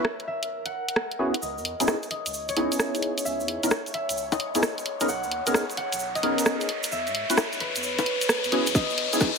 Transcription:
Already playing: A#4 C#5 E5
0.05 cross-stick
0.20 closed hi-hat
0.28 E5
0.43 closed hi-hat
0.65 F#5, closed hi-hat
0.89 closed hi-hat
0.96 cross-stick
1.11 closed hi-hat
1.19 B3 C#4 E4 F#4 G#4
1.34 closed hi-hat
1.42 C#2 C#5 D#5, riser, shaker
1.57 E2, shaker
1.65 open hi-hat
1.80 B1 B3 C#4 D#4 E4 G#4, closed hi-hat, shaker
1.88 cross-stick, high bongo, shaker
2.03 closed hi-hat, shaker
2.11 D#5, open hi-hat
2.26 C#2, closed hi-hat, shaker
2.34 shaker
2.49 C#5, closed hi-hat, shaker
2.57 C#2 B3 C#4 D#4 E4 G#4, open hi-hat
2.72 closed hi-hat, shaker
2.79 cross-stick, shaker
2.95 closed hi-hat, shaker
3.02 open hi-hat
3.18 closed hi-hat, shaker
3.25 C#2 E5, shaker
3.40 E2, shaker
3.48 open hi-hat
3.63 B1 B3 C#4 D#4 E4 A#4, closed hi-hat, shaker
3.71 cross-stick, high bongo, shaker
3.86 closed hi-hat, shaker
3.94 E5, open hi-hat
4.09 C#2, closed hi-hat, shaker
4.17 shaker
4.32 D#5, closed hi-hat, high bongo, shaker
4.40 open hi-hat
4.55 B3 C#4 D#4 E4 G#4, closed hi-hat, shaker
4.63 cross-stick, shaker
4.78 closed hi-hat, shaker
4.86 open hi-hat
5.01 B3 C#4 D#4 G#4 A#4, closed hi-hat, shaker
5.08 B1 F#5, shaker
5.23 D#2, shaker
5.31 open hi-hat
5.47 F#1 B3 C#4 D#4 G#4 A#4, closed hi-hat, shaker
5.54 cross-stick, high bongo, shaker
5.70 closed hi-hat, shaker
5.77 F#5, open hi-hat
5.92 B1, closed hi-hat, shaker
5.99 shaker
6.15 D#5, closed hi-hat, shaker
6.23 B1 B3 C#4 D#4 G#4 A#4, open hi-hat
6.38 closed hi-hat, shaker
6.46 cross-stick, shaker
6.61 closed hi-hat, shaker
6.69 open hi-hat
6.83 closed hi-hat, shaker
6.92 E2 E5, shaker
7.07 G#2, closed hi-hat, shaker
7.15 open hi-hat
7.30 C#2 B3 C#4 E4 F#4 B4, closed hi-hat, shaker
7.37 cross-stick, high bongo, shaker
7.53 closed hi-hat, shaker
7.60 B4, open hi-hat
7.76 E2, closed hi-hat, shaker
7.83 shaker
7.98 B4, closed hi-hat, high bongo, shaker
8.06 open hi-hat
8.21 closed hi-hat, shaker
8.29 cross-stick, shaker
8.44 E2, closed hi-hat, shaker
8.52 E1 B3 C#4 E4 F#4 G#4, open hi-hat
8.67 G#2, closed hi-hat, shaker
8.75 C#2 D#5, kick, snare, shaker
8.90 E2, shaker
8.98 open hi-hat
9.13 B1 B3 C#4 D#4 E4 G#4, closed hi-hat, shaker
9.20 kick, snare, high bongo, shaker

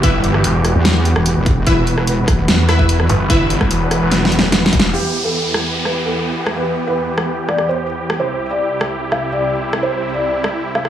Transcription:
Already playing: G1 E3 B3 F#4 G4
0.03 E4 B4 E5, kick, closed hi-hat
0.24 closed hi-hat
0.34 cross-stick
0.44 E1, closed hi-hat
0.65 cross-stick, closed hi-hat
0.75 E2
0.85 snare, closed hi-hat
1.05 closed hi-hat
1.16 E1, cross-stick
1.26 closed hi-hat
1.36 E1
1.46 kick, closed hi-hat
1.67 E1 E4 B4 E5, kick, closed hi-hat
1.87 closed hi-hat
1.98 cross-stick
2.07 closed hi-hat
2.28 kick, cross-stick, closed hi-hat
2.48 E2, snare, closed hi-hat
2.69 E4 B4 E5, cross-stick, closed hi-hat
2.79 kick
2.89 closed hi-hat
3.00 cross-stick
3.09 G1, closed hi-hat
3.30 E4 B4 E5, kick, closed hi-hat
3.50 closed hi-hat
3.61 kick, cross-stick
3.71 E1, closed hi-hat
3.91 cross-stick, closed hi-hat
4.02 E1
4.11 snare, closed hi-hat
4.25 snare
4.32 closed hi-hat
4.39 E1, snare
4.52 snare, closed hi-hat
4.66 snare
4.73 E1, kick, closed hi-hat
4.80 snare
4.93 E2 E3 B3 G4, downlifter
5.24 A4
5.54 cross-stick
5.85 B4, cross-stick
6.06 A4
6.47 cross-stick
6.56 B4
6.87 B4
7.18 cross-stick
7.49 D5, cross-stick
7.58 cross-stick
7.69 C5
8.10 cross-stick
8.20 C2 C3 E4 C5
8.51 D5
8.81 cross-stick
9.12 E5, cross-stick
9.32 D5
9.73 cross-stick
9.83 C5
10.14 D5
10.44 cross-stick
10.75 E5, cross-stick
10.85 cross-stick

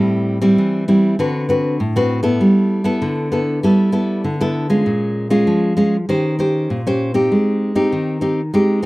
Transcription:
Already playing: A2 G3 C4 E4
0.41 G3 C4 E4
0.58 E3
0.88 G3 C4 E4
1.19 D3 C4 F#4 B4
1.49 C4 F#4 B4
1.80 A2
1.96 C4 F#4 B4
2.23 B3 E4 A4
2.41 G3
2.84 B3 E4 A4
3.02 D3
3.32 B3 E4 A4
3.63 G3 B3 E4 A4
3.92 B3 E4 A4
4.24 D3
4.41 B3 E4 A4
4.70 G#3 C#4 F4
4.86 A#2
5.30 G#3 C#4 F4
5.47 F3
5.77 G#3 C#4 F4
6.09 D#3 C#4 G4 C5
6.39 C#4 G4 C5
6.70 A#2
6.87 C#4 G4 C5
7.14 C4 D#4 G4
7.32 G#3
7.75 C4 D#4 G4
7.92 D#3
8.21 C4 D#4 G4
8.54 G#3 C4 D#4 G4
8.82 C4

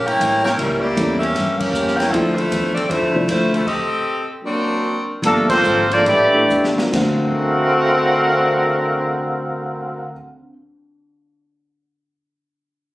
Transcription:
Already playing: A#1
0.06 E4 A#4 C#5 G5, ride
0.19 A1 A2 G3 A#3 C#4, kick, hi-hat pedal, ride
0.44 E4 A#4 C#5 G5, snare
0.57 C#2 A2 G3 A#3 C#4 E4 A#4, kick, ride
0.61 C#4
0.80 A#3 E4 G4 D5
0.97 E2 A2 G3 A#3 C#4 E4 A4, kick, hi-hat pedal, ride
1.19 C#4 G4 A#4 E5
1.23 ride
1.35 G2 A2 G3 A#3 C#4, kick, snare, ride
1.58 C#4 G4 A#4 F5, muted upright bass stroke, kick, crash
1.72 F2 A2 G3 A#3, hi-hat pedal
1.76 C#4
1.88 snare
1.96 E4 A#4 C#5 G5, ride
2.01 snare
2.11 D2 D3 F3 C4 D4 E4 A4, kick, ride
2.15 E4
2.35 A3 E4 F4 C5, ride
2.51 E2 D3 F3 C4 E4, kick, hi-hat pedal, ride
2.74 C4 F4 A4 D5, ride
2.89 F2 D3 F3 A3 C4 E4 F4 C5, kick, ride
3.01 D2
3.13 C2 F3 C4 D4 E4 C5
3.28 D2 D3 F3 A3 C4 E4 F4 C5, kick, hi-hat pedal, ride
3.54 A3 E4 F4 C5, ride
3.67 C4 G4 A4 D#5, kick, crash
4.43 F#3 A#3 C4 D4 F#4 A#4 D5
5.22 G1 D3 F3 G3 A3 A#3 D4 F4 A4, kick, ride
5.49 D3 F3 A#3 C4 F4 A4 C5, kick, crash
5.63 G#1 G3 A#3 F4 A4, hi-hat pedal
5.90 F3 A#3 D4 F4 A4 D5, ride
6.05 A1 A2 E3 G3 A3 D4 E4 G4 D5, kick, ride
6.33 A3 D4 E4 G4 A4
6.48 E2 A2 G3 D4 E4, hi-hat pedal
6.64 snare
6.77 C4 D4 F4 F#4 A#4, snare
6.89 D2 D3 F#3 A3 C4
6.93 D2 D3 C4 F#4 A#4 C5 F5 F#5, kick, snare, ride bell
7.03 C4

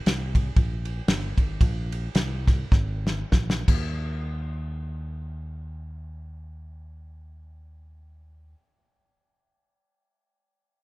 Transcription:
0.06 C2, snare, ride
0.35 kick, ride
0.56 A#1, kick, ride
0.85 ride
1.08 G1, snare, ride
1.38 G#1, kick, ride
1.61 A#1, kick, ride
1.92 ride
2.15 C2, snare, ride
2.48 kick, snare, ride
2.72 G#1, kick, snare
3.07 snare
3.32 A#1, kick, snare
3.50 snare
3.68 D#2, kick, crash

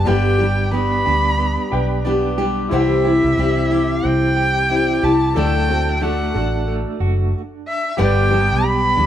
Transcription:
Already playing: B3 D4 G4
0.05 G1 G2 D3 G3 B3 D4 G4 B4 G5
0.39 G3 B3 D4 G4
0.71 G3 B3 D4 G4 B5
1.06 D2 G3 B3 D4 G4
1.39 B3
1.71 B1 D4 G4 B4 G5
2.05 G3 B3 D4 G4
2.38 G3 B3 D4 G4
2.69 C2 C3 E3 G3 C4 E4 G4 C5 E5
2.74 F#5
2.80 G5
3.05 C4 E4 G4
3.24 C2
3.38 C2 G3 C4 E4 G4
3.71 C4 E4 G4
4.03 C2 C4 G5
4.37 G4
4.70 G3 C4 E4 G4
5.03 C2 C4 E4 G4 A5
5.34 D2 D3 F#3 A3 D4 A4 D5 G5 A5
5.69 C4 D4 F#4 A4
5.89 D4
5.96 G5
6.01 A3 D4 F#4 A4 F#5
6.34 A1 D4 F#4 A4
6.68 A3
7.00 F#1 F#4
7.68 E5
7.97 G1 G2 D3 G3 B3 D4 G4 B4 G5
8.02 D5
8.31 G3 B3 D4 G4
8.52 B1
8.64 G4 B5
8.96 D2 G3 B3 D4 G4

